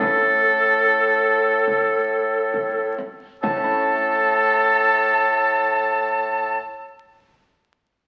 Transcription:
Already playing: A3 C#4 E4 A4
0.00 A2 A4
1.67 frame drum
2.54 frame drum
2.98 frame drum
3.43 A2 A4 A5, frame drum
3.50 A3
3.57 C#4
3.64 E4
3.71 C#5

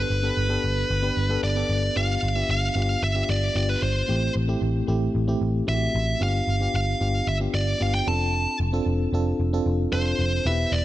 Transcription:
Already playing: B3 D4 G4 A4 B4
0.10 G1
0.23 B3 D4 G4 A4
0.37 G1
0.49 B3 D4 G4 A4
0.64 G1
0.90 G1
1.02 B3 D4 G4 B4
1.17 G1
1.29 B3 D4 G4 A4
1.43 G1 D5
1.56 B3 D4 G4 A4
1.69 G1
1.96 G1 B3 D4 F4 G4 F5
2.23 G1
2.35 B3 D4 F4 G4 E5
2.49 G1 F5
2.76 G1 B3 D4 F4 G4
3.02 G1 E5
3.15 B3 D4 F4 G4
3.29 G1 D5
3.54 G1 B3 D4 F4 G4 D5
3.69 B4
3.82 G1 C5
4.08 A1 A3 C4 E4 G4
4.36 A1
4.48 A3 C4 E4 G4
4.62 A1
4.87 A1 A3 C4 E4 G4
5.15 A1
5.28 A3 C4 E4 G4
5.41 A1
5.67 A1 A3 C4 E4 F#4 E5
5.75 G4
5.95 A1
6.20 G1 B3 D4 F4 G4 F5
6.47 G1
6.60 B3 D4 F4 G4
6.74 G1 F5
7.00 G1 B3 D4 F4 G4
7.27 G1 E5
7.40 B3 D4 F4 G4
7.54 G1 D5
7.80 G1 B3 D4 F4 G4 F5
7.94 G5
8.06 F1 C4 D4 F4 A4 A5
8.60 F1
8.73 C4 D4 F4 A4
8.86 F1
9.13 F1 C4 D4 F4 A4
9.40 F1
9.53 C4 D4 F4 A4
9.66 F1
9.93 F1 C4 D4 F4 A4 C5
10.19 F1
10.45 E1 B3 E4 G4 B4 E5
10.72 E1 D5

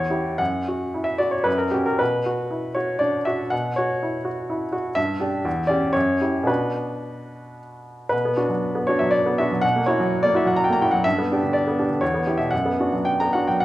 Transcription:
Already playing: E2 C#5
0.10 E4 G4
0.38 F#2 F#5
0.68 F#4
0.94 E4
1.04 E5
1.18 F#4 D5
1.31 C#5
1.44 F#2 B4
1.58 A#4
1.71 C#4 F#4 G4
1.86 A#4
1.99 B2 B4
2.26 F#4
2.50 E4
2.75 F#4 C#5
2.99 D4 D5
3.25 F#4 E5
3.50 B2 F#5
3.76 F#4 C#5
4.02 E4
4.25 F#4
4.50 E4
4.72 F#4
4.95 G2 E5
5.20 D4 G4
5.45 E2
5.67 C#4 G4 D5
5.93 F#2 C#5
6.21 E4 G4
6.43 B2 B3 D4 F#4 B4
8.09 B2 B4
8.25 B3
8.37 D4 F#4
8.49 F#3
8.75 B3
8.87 D4 F#4 C#5
8.99 F#3 E5
9.11 D5
9.26 B3
9.38 D4 F#4 E5
9.52 F#3
9.61 B2 F#5
9.76 A#3
9.86 E4 F#4 C#5
10.00 F#3
10.23 A#3 D5
10.34 E4 F#4 E5
10.45 F#3 F#5
10.56 A#5
10.64 G5
10.69 A#3 A#5
10.81 E4 F#4 G5
10.91 F#3 F#5
11.04 G2 E5
11.18 B3
11.32 D4 G4
11.43 D3
11.53 D5
11.67 B3
11.79 D4 G4
11.90 D3
12.01 E2 C#5
12.14 B3
12.27 E4 G4
12.38 B2 E5
12.51 F#2 F#5
12.66 B3
12.80 D4 F#4
12.93 F#3
13.05 G5
13.20 B3 A#5
13.33 D4 F#4 F#5
13.48 F#3 G5
13.60 F#5

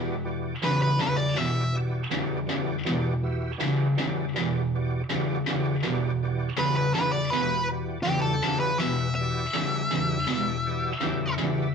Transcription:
Already playing: E2 B2 E3 F#4 G4 D5
0.24 E3 F#4 G4 D5
0.63 E2 C#3 E3 F#4 G4 B4 D5
0.82 B4
0.97 E2 E3 F#4 G4 D5
1.01 C#3 B4
1.16 D5
1.34 E2 B2 E3 F#4 G4 D5
1.38 E5
1.72 E3 F#4 G4 D5
2.10 E2 C#3 E3 F#4 G4 D5
2.47 E2 C#3 E3 F#4 G4 D5
2.85 E2 B2 E3 F#4 G4 D5
3.23 E3 F#4 G4 E5
3.58 E2 C#3 E3 F#4 G4 D5
3.96 E2 C#3 E3 F#4 G4 D5
4.34 E2 B2 E3 F#4 G4 D5
4.75 E3 F#4 G4 D5
5.10 E2 C#3 E3 F#4 G4 D5
5.46 E2 C#3 E3 F#4 G4 D5
5.82 E2 B2 E3 F#4 G4 D5
6.23 E3 F#4 G4 D5
6.57 E2 C#3 E3 F#4 G4 B4 D5
6.76 B4
6.93 E2 C#3 E3 F#4 G4 B4 D5
7.11 D5
7.30 E2 B2 E3 F#4 G4 B4 E5
7.71 E3 F#4 G4 D5
8.03 E2 C#3 G4
8.08 E3 F#4 G4 D5
8.21 A4
8.43 E2 C#3 E3 F#4 G4 D5
8.60 B4
8.78 E2 B2 E3 F#4 G4 B4 E5
9.15 E3 G4 E5
9.19 F#4 D5
9.53 E2 C#3 E3 F#4 G4 D5
9.91 E2 C#3 E3 F#4 G4 D5
10.27 E2 B2 E3 F#4 G4 D5
10.66 E3 F#4 G4 D5
11.01 E2 C#3 E3 F#4 G4 D5 G5
11.23 E5
11.38 E2 C#3 E3 F#4
11.42 G4 D5

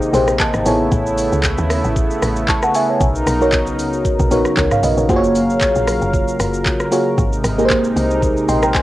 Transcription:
Already playing: C3 D#3 A#3 D#4 G4 G#4 C5 D#5 G5
0.02 shaker
0.13 A#1 A#3 D#4 G4 G#4 C5, open hi-hat, shaker
0.28 cross-stick, shaker
0.40 A5, kick, clap, shaker
0.54 G#1, cross-stick, shaker
0.66 A1 C#3 A3 B3 E4 G#4 A4 C#5, open hi-hat, shaker
0.92 A1, kick, shaker
1.06 shaker
1.18 open hi-hat, shaker
1.32 C#2, shaker
1.43 kick, clap, shaker
1.58 D#2, shaker
1.70 cross-stick, open hi-hat, shaker
1.84 A1, shaker
1.96 kick, shaker
2.11 shaker
2.22 A1, cross-stick, open hi-hat, shaker
2.36 shaker
2.48 A5 C#6, kick, clap, shaker
2.62 F#5 A5, cross-stick, shaker
2.75 E5 G#5, open hi-hat, shaker
2.89 C#5 E5
3.00 B1 F#3 D#4 A#4, kick, shaker
3.15 shaker
3.27 B1, cross-stick, open hi-hat, shaker
3.41 B3 D#4 F#4 A#4 C#5, shaker
3.52 kick, clap, shaker
3.67 shaker
3.79 C#2, open hi-hat, shaker
3.93 shaker
4.05 kick, shaker
4.19 B1, kick, shaker
4.31 A#1 B3 D#4 F#4 A#4 C#5, open hi-hat, shaker
4.45 cross-stick, shaker
4.57 C#2 A#4 C#5, kick, clap, shaker
4.71 C#5 F5, cross-stick, mid tom, shaker
4.83 B1 B4 D#5, open hi-hat, shaker
4.97 A#1 A#4 C#5, shaker
5.09 F#1 A#3 F4 F#4 G#4 C5 F5, kick, shaker
5.16 C#5
5.24 shaker
5.35 open hi-hat, shaker
5.50 G#1, shaker
5.61 kick, clap, shaker
5.75 A#1, shaker
5.87 cross-stick, open hi-hat, shaker
6.02 F#1, shaker
6.13 kick, shaker
6.28 shaker
6.40 F#1, cross-stick, open hi-hat, shaker
6.54 shaker
6.66 kick, clap, shaker
6.80 cross-stick, shaker
6.91 A#3 F4 F#4 G#4 C#5, open hi-hat, shaker
7.18 G#1 C3 G#3 D#4, kick, shaker
7.33 shaker
7.44 G#1, cross-stick, open hi-hat, shaker
7.58 A#3 D#4 G4 G#4 A#4, shaker
7.65 C5
7.70 kick, clap, shaker
7.84 shaker
7.96 C2, open hi-hat, shaker
8.11 shaker
8.22 kick, shaker
8.37 shaker
8.49 A#1 D#5 G5 C6, open hi-hat, shaker
8.62 G5 A#5, cross-stick, shaker
8.75 G#5, kick, clap, shaker

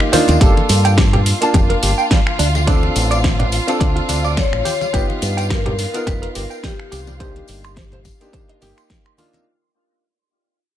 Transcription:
Already playing: F4 F5
0.00 finger snap
0.12 A#3 D4 D#4 F4 C5, muted fingered electric bass stroke, open hi-hat, tambourine, high conga
0.28 D#2 C4, closed hi-hat, tambourine, muted conga
0.40 G1 A#3 D4 F4 G4 A4 F5, kick, closed hi-hat, tambourine
0.57 muted conga
0.69 G2, open hi-hat, tambourine
0.85 G5, closed hi-hat, tambourine
0.98 G4, kick, snare, closed hi-hat, tambourine, high conga
1.13 G4, closed hi-hat, low conga
1.26 open hi-hat, tambourine
1.41 A#3 D4 F4 A5, closed hi-hat, tambourine
1.54 F1 G4, kick, closed hi-hat, tambourine, muted conga, high conga
1.70 A#4, closed hi-hat
1.82 G1 G4, open hi-hat, tambourine
1.98 G5, tambourine
2.11 G3, kick, snare, closed hi-hat, tambourine
2.27 finger snap
2.39 D2 D4, open hi-hat, tambourine
2.55 D3, tambourine, muted conga
2.67 C4 D4 F4 A4, kick, closed hi-hat, tambourine
2.83 muted conga
2.96 A1, open hi-hat, tambourine
3.11 D5, closed hi-hat, tambourine
3.24 D4, kick, snare, closed hi-hat, tambourine, high conga
3.39 D4, closed hi-hat, low conga
3.52 open hi-hat, tambourine
3.67 C4 D4 F4 A4, closed hi-hat, tambourine
3.80 D2 D4, kick, closed hi-hat, tambourine, high conga
3.96 F4, closed hi-hat
4.09 D2 D4, open hi-hat, tambourine, muted conga
4.24 D5, tambourine
4.31 D5
4.37 D3 C#5, kick, snare, closed hi-hat, tambourine
4.53 A1, finger snap
4.65 G4, open hi-hat, tambourine, high conga
4.81 G3, tambourine, muted conga
4.93 G1 B3 D#4 F4 G4 B4, kick, closed hi-hat, tambourine
5.10 muted conga
5.22 G2, open hi-hat, tambourine
5.37 G5, closed hi-hat, tambourine
5.50 G4 A#4, kick, snare, closed hi-hat, tambourine, high conga
5.66 G4, closed hi-hat, low conga
5.78 open hi-hat, tambourine
5.93 B3 D#4 F4 A#4, closed hi-hat, tambourine
6.07 F1 G4 B4, kick, closed hi-hat, tambourine, muted conga, high conga
6.22 A#4, closed hi-hat
6.35 G1 G4 A#4, open hi-hat, tambourine
6.50 G5, tambourine
6.63 G3 G4, kick, snare, closed hi-hat, tambourine
6.80 finger snap
6.92 C2 G4, open hi-hat, tambourine
7.07 G3, tambourine, muted conga
7.19 A#3 D4 D#4 G4 C5, kick, closed hi-hat, tambourine
7.36 closed hi-hat, muted conga
7.48 G1, open hi-hat, tambourine
7.64 C6, finger snap, closed hi-hat, tambourine
7.76 C5, kick, snare, closed hi-hat, tambourine, high conga
7.92 C5, closed hi-hat, low conga
8.04 kick, open hi-hat, tambourine, high conga
8.20 A#3 D4 D#4 G4, closed hi-hat, tambourine
8.33 C5, kick, closed hi-hat, tambourine, high conga
8.49 D#5, closed hi-hat
8.61 G1 A#3 D#4 G4, snare, open hi-hat, tambourine, muted conga
8.77 C6, finger snap, closed hi-hat, tambourine
8.90 A#4, kick, snare, closed hi-hat, tambourine
9.06 C6, finger snap
9.18 A#3 D4 D#4 F4 C6, open hi-hat, tambourine, high conga
9.33 C4, closed hi-hat, tambourine, muted conga

